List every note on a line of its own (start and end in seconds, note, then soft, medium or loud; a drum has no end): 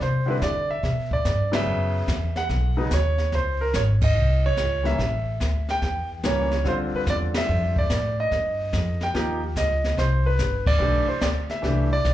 0.00 0.41 C3 medium
0.00 0.27 C5 medium
0.00 brush sweep soft
0.00 kick soft
0.00 snare soft
0.26 0.39 D3 medium
0.26 0.40 G3 medium
0.26 0.40 C4 medium
0.26 0.40 E4 medium
0.30 0.35 B4 medium
0.42 0.82 D3 medium
0.42 0.68 D5 medium
0.42 kick soft
0.42 snare medium
0.42 hi-hat pedal soft
0.71 1.13 E5 medium
0.83 1.23 B2 medium
0.83 brush sweep soft
0.83 kick soft
0.83 snare soft
1.11 1.55 D5 medium
1.11 kick soft
1.25 1.65 G2 medium
1.25 kick soft
1.25 snare medium
1.25 hi-hat pedal medium
1.52 2.05 C#3 medium
1.52 2.05 F#3 medium
1.52 2.05 B3 soft
1.52 2.06 C#4 medium
1.52 2.39 E5 loud
1.52 snare medium
1.52 ride medium
1.66 2.07 F#2 medium
1.66 brush sweep soft
2.08 2.48 E2 medium
2.08 kick soft
2.08 snare medium
2.08 hi-hat pedal medium
2.36 2.75 F#5 medium
2.36 snare soft
2.49 2.90 B1 medium
2.49 brush sweep soft
2.49 kick soft
2.49 snare soft
2.77 2.90 C#3 medium
2.77 2.90 F#3 medium
2.77 2.90 B3 medium
2.77 2.90 D#4 medium
2.91 3.31 D#2 medium
2.91 3.31 C#5 medium
2.91 kick soft
2.91 snare medium
2.91 hi-hat pedal medium
3.18 snare soft
3.32 3.73 C#2 medium
3.32 3.60 C5 medium
3.32 brush sweep soft
3.32 kick soft
3.32 snare soft
3.61 3.75 A#4 medium
3.73 4.14 G#1 medium
3.73 3.82 C#5 medium
3.73 kick soft
3.73 snare soft
3.73 hi-hat pedal medium
4.01 4.46 D#5 medium
4.01 kick medium
4.01 ride medium
4.15 4.56 C2 medium
4.15 brush sweep soft
4.46 4.84 C#5 medium
4.57 4.98 C#2 medium
4.57 kick soft
4.57 snare medium
4.57 hi-hat pedal medium
4.83 4.97 E3 medium
4.83 4.97 G3 soft
4.83 4.98 A#3 soft
4.83 4.98 C#4 medium
4.83 5.71 E5 medium
4.83 snare soft
4.98 5.39 A1 medium
4.98 brush sweep soft
4.98 kick soft
4.98 snare soft
5.40 5.81 D2 medium
5.40 kick soft
5.40 snare medium
5.40 hi-hat pedal soft
5.69 6.08 G5 loud
5.69 snare soft
5.82 6.22 E2 medium
5.82 brush sweep soft
5.82 kick soft
5.82 snare soft
6.23 6.64 C#2 medium
6.23 6.49 E3 medium
6.23 6.49 G3 medium
6.23 6.49 A#3 medium
6.23 6.50 C#4 medium
6.23 6.64 C#5 medium
6.23 kick soft
6.23 snare medium
6.23 hi-hat pedal soft
6.51 snare soft
6.65 6.91 D2 medium
6.65 7.81 D3 medium
6.65 7.82 G3 medium
6.65 7.82 C4 medium
6.65 7.82 F4 medium
6.65 6.74 C5 medium
6.65 brush sweep soft
6.65 kick soft
6.65 snare soft
6.94 7.01 B4 medium
6.94 muted upright bass stroke soft
7.06 7.47 E2 medium
7.06 7.16 D5 medium
7.06 kick soft
7.06 snare medium
7.06 hi-hat pedal soft
7.34 7.75 E5 loud
7.34 snare medium
7.34 ride medium
7.48 7.89 F2 medium
7.48 brush sweep soft
7.76 8.16 D5 medium
7.76 kick soft
7.90 8.30 A2 medium
7.90 kick soft
7.90 snare medium
7.90 hi-hat pedal medium
8.20 9.04 D#5 medium
8.31 8.71 G2 medium
8.31 brush sweep soft
8.31 kick soft
8.31 snare soft
8.73 9.13 F2 medium
8.73 kick soft
8.73 snare medium
8.73 hi-hat pedal medium
9.01 9.41 G5 medium
9.01 snare soft
9.14 9.55 D#2 medium
9.14 9.39 F3 medium
9.14 9.39 A#3 medium
9.14 9.40 D#4 medium
9.14 9.40 G4 medium
9.14 brush sweep soft
9.14 kick soft
9.14 snare soft
9.56 9.96 C#2 medium
9.56 9.99 D#5 medium
9.56 kick soft
9.56 snare medium
9.56 hi-hat pedal medium
9.84 snare soft
9.97 10.38 C2 medium
9.97 10.24 C5 medium
9.97 brush sweep soft
9.97 kick soft
9.97 snare soft
10.26 10.64 B4 medium
10.39 10.79 G1 medium
10.39 kick soft
10.39 snare soft
10.39 hi-hat pedal medium
10.67 11.05 D5 loud
10.67 kick medium
10.67 ride medium
10.78 11.06 B1 medium
10.78 11.04 E3 medium
10.78 11.05 A3 medium
10.78 11.05 D4 medium
10.78 11.05 G4 medium
10.78 brush sweep medium
11.08 11.21 C5 medium
11.08 muted upright bass stroke soft
11.21 11.62 D2 medium
11.21 11.28 D5 medium
11.21 kick soft
11.21 snare medium
11.21 hi-hat pedal medium
11.49 11.93 E5 medium
11.49 snare soft
11.62 12.03 C2 medium
11.62 11.88 E3 medium
11.62 11.88 A3 medium
11.62 11.88 D4 medium
11.62 11.88 G4 medium
11.62 brush sweep soft
11.62 kick soft
11.62 snare soft
11.93 12.14 D5 medium
12.05 12.14 B1 medium
12.05 kick soft
12.05 snare medium
12.05 hi-hat pedal medium